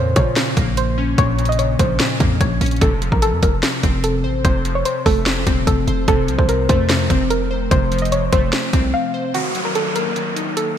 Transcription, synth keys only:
0, 0, Header, 1, 2, 480
1, 0, Start_track
1, 0, Tempo, 408163
1, 1389, Time_signature, 4, 2, 24, 8
1, 12677, End_track
2, 0, Start_track
2, 0, Title_t, "Synth keys"
2, 0, Program_c, 0, 88
2, 0, Control_c, 0, 64, 127
2, 0, Note_on_c, 0, 46, 84
2, 0, Note_on_c, 0, 49, 75
2, 187, Note_on_c, 0, 53, 84
2, 415, Note_off_c, 0, 46, 0
2, 429, Note_on_c, 0, 46, 93
2, 672, Note_on_c, 0, 58, 90
2, 909, Note_off_c, 0, 49, 0
2, 1149, Note_on_c, 0, 61, 95
2, 1378, Note_off_c, 0, 46, 0
2, 1388, Note_off_c, 0, 53, 0
2, 1392, Note_on_c, 0, 46, 96
2, 1626, Note_on_c, 0, 49, 82
2, 1858, Note_off_c, 0, 46, 0
2, 1871, Note_off_c, 0, 58, 0
2, 1872, Note_on_c, 0, 46, 83
2, 2112, Note_on_c, 0, 53, 89
2, 2337, Note_off_c, 0, 46, 0
2, 2349, Note_off_c, 0, 61, 0
2, 2351, Note_on_c, 0, 46, 93
2, 2594, Note_on_c, 0, 58, 81
2, 2828, Note_off_c, 0, 49, 0
2, 3068, Note_on_c, 0, 61, 88
2, 3304, Note_on_c, 0, 48, 101
2, 3309, Note_off_c, 0, 61, 0
2, 3310, Note_off_c, 0, 46, 0
2, 3310, Note_off_c, 0, 53, 0
2, 3312, Note_off_c, 0, 58, 0
2, 3325, Control_c, 0, 64, 0
2, 3549, Note_on_c, 0, 53, 84
2, 3550, Control_c, 0, 64, 127
2, 3773, Note_off_c, 0, 48, 0
2, 3787, Note_on_c, 0, 48, 84
2, 4253, Note_off_c, 0, 48, 0
2, 4268, Note_on_c, 0, 48, 91
2, 4508, Note_on_c, 0, 60, 88
2, 4749, Note_off_c, 0, 53, 0
2, 4985, Note_on_c, 0, 72, 97
2, 5211, Note_off_c, 0, 48, 0
2, 5226, Note_on_c, 0, 48, 93
2, 5469, Note_on_c, 0, 53, 86
2, 5697, Note_off_c, 0, 48, 0
2, 5708, Note_off_c, 0, 60, 0
2, 5711, Note_on_c, 0, 48, 88
2, 5950, Note_on_c, 0, 57, 82
2, 6178, Note_off_c, 0, 48, 0
2, 6187, Note_off_c, 0, 72, 0
2, 6192, Note_on_c, 0, 48, 98
2, 6425, Note_on_c, 0, 60, 93
2, 6669, Note_off_c, 0, 53, 0
2, 6912, Note_on_c, 0, 72, 97
2, 7137, Note_off_c, 0, 48, 0
2, 7150, Note_off_c, 0, 57, 0
2, 7151, Note_on_c, 0, 48, 102
2, 7394, Note_on_c, 0, 53, 79
2, 7611, Note_off_c, 0, 48, 0
2, 7625, Note_on_c, 0, 48, 82
2, 7627, Note_off_c, 0, 60, 0
2, 7873, Note_on_c, 0, 57, 96
2, 8101, Note_off_c, 0, 48, 0
2, 8111, Note_off_c, 0, 72, 0
2, 8115, Note_on_c, 0, 48, 99
2, 8350, Note_on_c, 0, 60, 90
2, 8592, Note_off_c, 0, 53, 0
2, 8828, Note_on_c, 0, 72, 92
2, 9056, Note_off_c, 0, 48, 0
2, 9070, Note_on_c, 0, 48, 96
2, 9071, Note_off_c, 0, 57, 0
2, 9312, Note_on_c, 0, 53, 91
2, 9538, Note_off_c, 0, 48, 0
2, 9549, Note_off_c, 0, 60, 0
2, 9552, Note_on_c, 0, 48, 85
2, 9791, Note_on_c, 0, 57, 92
2, 10014, Note_off_c, 0, 48, 0
2, 10028, Note_off_c, 0, 72, 0
2, 10028, Note_on_c, 0, 48, 91
2, 10270, Note_on_c, 0, 60, 97
2, 10511, Note_off_c, 0, 53, 0
2, 10747, Note_on_c, 0, 72, 93
2, 10984, Note_on_c, 0, 51, 89
2, 10988, Note_off_c, 0, 72, 0
2, 10989, Note_off_c, 0, 48, 0
2, 10989, Note_off_c, 0, 60, 0
2, 10990, Note_off_c, 0, 57, 0
2, 11007, Control_c, 0, 64, 0
2, 11230, Control_c, 0, 64, 127
2, 11231, Note_on_c, 0, 54, 77
2, 11455, Note_off_c, 0, 51, 0
2, 11469, Note_on_c, 0, 51, 77
2, 11703, Note_on_c, 0, 58, 74
2, 11941, Note_off_c, 0, 51, 0
2, 11955, Note_on_c, 0, 51, 89
2, 12187, Note_on_c, 0, 63, 79
2, 12430, Note_off_c, 0, 54, 0
2, 12677, Note_off_c, 0, 51, 0
2, 12677, Note_off_c, 0, 58, 0
2, 12677, Note_off_c, 0, 63, 0
2, 12677, End_track
0, 0, End_of_file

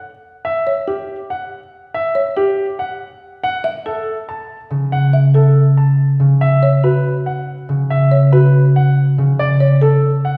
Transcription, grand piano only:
0, 0, Header, 1, 2, 480
1, 0, Start_track
1, 0, Key_signature, 2, "minor"
1, 0, Tempo, 425532
1, 511, Time_signature, 7, 3, 24, 8
1, 11698, End_track
2, 0, Start_track
2, 0, Title_t, "Grand piano"
2, 0, Program_c, 0, 0
2, 505, Note_on_c, 0, 76, 69
2, 821, Note_off_c, 0, 76, 0
2, 987, Note_on_c, 0, 67, 51
2, 1302, Note_off_c, 0, 67, 0
2, 1469, Note_on_c, 0, 78, 59
2, 1782, Note_off_c, 0, 78, 0
2, 2193, Note_on_c, 0, 76, 73
2, 2504, Note_off_c, 0, 76, 0
2, 2670, Note_on_c, 0, 67, 59
2, 2982, Note_off_c, 0, 67, 0
2, 3148, Note_on_c, 0, 78, 61
2, 3462, Note_off_c, 0, 78, 0
2, 3875, Note_on_c, 0, 78, 80
2, 4184, Note_off_c, 0, 78, 0
2, 4351, Note_on_c, 0, 69, 60
2, 4663, Note_off_c, 0, 69, 0
2, 4835, Note_on_c, 0, 81, 58
2, 5144, Note_off_c, 0, 81, 0
2, 5553, Note_on_c, 0, 78, 68
2, 5864, Note_off_c, 0, 78, 0
2, 6037, Note_on_c, 0, 69, 50
2, 6345, Note_off_c, 0, 69, 0
2, 6513, Note_on_c, 0, 81, 54
2, 6824, Note_off_c, 0, 81, 0
2, 7232, Note_on_c, 0, 76, 73
2, 7543, Note_off_c, 0, 76, 0
2, 7714, Note_on_c, 0, 71, 55
2, 8024, Note_off_c, 0, 71, 0
2, 8192, Note_on_c, 0, 78, 54
2, 8503, Note_off_c, 0, 78, 0
2, 8916, Note_on_c, 0, 76, 70
2, 9225, Note_off_c, 0, 76, 0
2, 9390, Note_on_c, 0, 71, 56
2, 9703, Note_off_c, 0, 71, 0
2, 9883, Note_on_c, 0, 78, 60
2, 10187, Note_off_c, 0, 78, 0
2, 10597, Note_on_c, 0, 74, 80
2, 10905, Note_off_c, 0, 74, 0
2, 11082, Note_on_c, 0, 69, 61
2, 11387, Note_off_c, 0, 69, 0
2, 11560, Note_on_c, 0, 78, 58
2, 11698, Note_off_c, 0, 78, 0
2, 11698, End_track
0, 0, End_of_file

